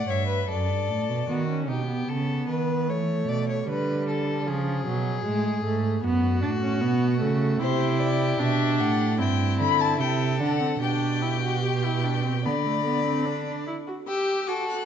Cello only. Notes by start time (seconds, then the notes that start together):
0.08 G2
0.49 F#2
0.70 G2
0.89 A2
1.09 B2
1.30 D#3
1.70 B2
2.09 C#3
2.49 D#3
2.90 E3
3.28 B2
3.69 D3
4.48 C#3
4.88 B2
5.27 A2
5.66 G#2
6.04 F#2
6.43 A2
6.82 B2
7.22 C#3
7.61 C3
8.41 B2
8.80 A2
9.20 G2
9.60 D3
10.00 C3
10.40 D3
10.81 B2
12.46 D3